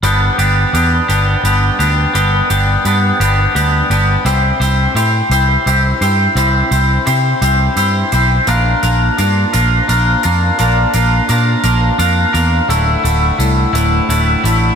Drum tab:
HH |xxxxxx|xxxxxx|xxxxxx|xxxxxx|

HH |xxxxxx|xxxxxx|xxxxxx|